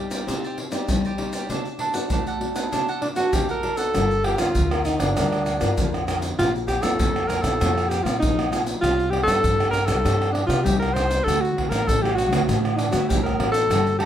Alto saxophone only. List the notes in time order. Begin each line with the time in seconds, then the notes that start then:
3.01 D4
3.16 F#4
3.34 G4
3.51 A#4
3.78 A4
4.25 G4
4.39 F4
4.86 D#4
5.00 D4
6.38 F4
6.67 G4
6.82 A4
7.28 A#4
7.42 A4
7.89 G4
8.03 F4
8.19 D#4
8.81 F4
9.10 G4
9.23 A4
9.71 A#4
9.86 A4
10.33 D4
10.47 F4
10.64 G4
10.79 A#4
10.93 C5
11.24 A4
11.41 F#4
11.69 A#4
11.88 A4
12.02 G4
12.15 F#4
12.76 D4 D#4
12.91 F#4
13.08 G4
13.23 A#4
13.52 A4
13.99 G4